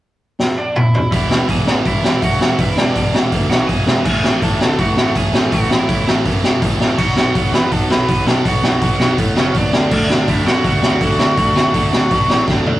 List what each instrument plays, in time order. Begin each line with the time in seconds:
0.39 snare
0.58 lead electric guitar D4 D5
0.76 lead electric guitar E4 E5, mid tom
0.94 floor tom
1.11 picked electric bass E1, overdriven electric guitar E2 B2 E3, lead electric guitar E4 E5, kick, open hi-hat
1.30 picked electric bass E1, overdriven electric guitar E2 B2 E3, snare
1.48 picked electric bass E1, overdriven electric guitar E2 B2 E3, lead electric guitar G#4 G#5, kick, open hi-hat
1.66 picked electric bass A1, overdriven electric guitar E2 B2 E3, snare
1.85 picked electric bass E1, overdriven electric guitar E2 B2 E3, lead electric guitar E4 E5, kick, open hi-hat
2.03 picked electric bass E1, overdriven electric guitar E2 B2 E3, snare
2.22 picked electric bass E1, overdriven electric guitar E2 B2 E3, lead electric guitar F#4 F#5, kick, open hi-hat
2.40 picked electric bass E1, overdriven electric guitar E2 B2 E3, snare
2.58 picked electric bass E1, overdriven electric guitar E2 B2 E3, lead electric guitar E4 E5, kick, open hi-hat
2.76 picked electric bass E1, overdriven electric guitar E2 B2 E3, lead electric guitar D4 D5, snare
2.94 picked electric bass E1, overdriven electric guitar E2 B2 E3, kick, open hi-hat
3.14 picked electric bass E1, overdriven electric guitar E2 B2 E3, snare
3.32 picked electric bass D2, overdriven electric guitar E2 B2 E3, kick, open hi-hat
3.50 picked electric bass B1, overdriven electric guitar E2 B2 E3, lead electric guitar F#4 F#5, snare
3.67 picked electric bass E1, overdriven electric guitar E2 B2 E3, lead electric guitar G#4 G#5, kick, open hi-hat
3.86 picked electric bass E1, overdriven electric guitar E2 B2 E3, snare
4.05 picked electric bass A1, overdriven electric guitar A2 E3 A3, lead electric guitar G#4 G#5, kick, crash
4.23 picked electric bass A1, overdriven electric guitar A2 E3 A3, snare
4.42 picked electric bass A1, overdriven electric guitar A2 E3 A3, lead electric guitar A4 A5, kick, open hi-hat
4.60 picked electric bass D2, overdriven electric guitar A2 E3 A3, snare
4.79 picked electric bass A1, overdriven electric guitar A2 E3 A3, lead electric guitar F#4 F#5, kick, open hi-hat
4.97 picked electric bass A1, overdriven electric guitar A2 E3 A3, snare
5.15 picked electric bass A1, overdriven electric guitar A2 E3 A3, lead electric guitar G#4 G#5, kick, open hi-hat
5.33 picked electric bass A1, overdriven electric guitar A2 E3 A3, snare
5.51 picked electric bass A1, overdriven electric guitar A2 E3 A3, lead electric guitar F#4 F#5, kick, open hi-hat
5.70 picked electric bass A1, overdriven electric guitar A2 E3 A3, lead electric guitar E4 E5, snare
5.88 picked electric bass A1, overdriven electric guitar A2 E3 A3, kick, open hi-hat
6.06 picked electric bass A1, overdriven electric guitar A2 E3 A3, snare
6.25 picked electric bass F#2, overdriven electric guitar A2 E3 A3, kick, open hi-hat
6.43 picked electric bass E1, overdriven electric guitar A2 E3 A3, snare
6.62 picked electric bass A1, overdriven electric guitar A2 E3 A3, kick, open hi-hat
6.80 picked electric bass A1, overdriven electric guitar A2 E3 A3, snare
6.98 picked electric bass B1, overdriven electric guitar B2 F#3 B3, lead electric guitar F#4 F#5, kick, crash
7.16 picked electric bass B1, overdriven electric guitar B2 F#3 B3, lead electric guitar F#4 F#5, snare
7.34 picked electric bass B1, overdriven electric guitar B2 F#3 B3, kick, open hi-hat
7.53 picked electric bass E2, overdriven electric guitar B2 F#3 B3, lead electric guitar B4 B5, snare
7.72 picked electric bass B1, overdriven electric guitar B2 F#3 B3, lead electric guitar A4 A5, kick, open hi-hat
7.90 picked electric bass B1, overdriven electric guitar B2 F#3 B3, lead electric guitar B4 B5, snare
8.08 picked electric bass B1, overdriven electric guitar B2 F#3 B3, kick, open hi-hat
8.26 picked electric bass B1, overdriven electric guitar B2 F#3 B3, lead electric guitar A4 A5, snare
8.45 picked electric bass B1, overdriven electric guitar B2 F#3 B3, lead electric guitar F#4 F#5, kick, open hi-hat
8.63 picked electric bass B1, overdriven electric guitar B2 F#3 B3, snare
8.81 picked electric bass B1, overdriven electric guitar B2 F#3 B3, kick, open hi-hat
9.00 picked electric bass B1, overdriven electric guitar B2 F#3 B3, snare
9.18 picked electric bass A2, overdriven electric guitar B2 F#3 B3, kick, open hi-hat
9.36 picked electric bass F#1, overdriven electric guitar B2 F#3 B3, lead electric guitar C#4 C#5, snare
9.54 picked electric bass D#2, overdriven electric guitar B2 F#3 B3, lead electric guitar D4 D5, kick, open hi-hat
9.73 picked electric bass D2, overdriven electric guitar D3 A3 D4, snare
9.91 picked electric bass D2, overdriven electric guitar D3 A3 D4, lead electric guitar D4 D5, kick, crash
10.09 picked electric bass D2, overdriven electric guitar D3 A3 D4, snare
10.27 picked electric bass D2, overdriven electric guitar D3 A3 D4, lead electric guitar E4 E5, kick, open hi-hat
10.45 picked electric bass F#2, overdriven electric guitar D3 A3 D4, lead electric guitar F#4 F#5, snare
10.64 picked electric bass D2, overdriven electric guitar D3 A3 D4, kick, open hi-hat
10.81 picked electric bass D2, overdriven electric guitar D3 A3 D4, snare
11.01 picked electric bass D2, overdriven electric guitar D3 A3 D4, kick, open hi-hat
11.19 picked electric bass D2, overdriven electric guitar D3 A3 D4, snare
11.37 picked electric bass D2, overdriven electric guitar D3 A3 D4, kick, open hi-hat
11.55 picked electric bass D2, overdriven electric guitar D3 A3 D4, snare
11.74 picked electric bass D2, overdriven electric guitar D3 A3 D4, kick, open hi-hat
11.91 picked electric bass D2, overdriven electric guitar D3 A3 D4, snare
12.11 picked electric bass B2, overdriven electric guitar D3 A3 D4, kick, open hi-hat
12.29 picked electric bass A1, overdriven electric guitar D3 A3 D4, snare
12.48 picked electric bass D2, overdriven electric guitar D3 A3 D4, kick, snare
12.65 picked electric bass D2, overdriven electric guitar D3 A3 D4, floor tom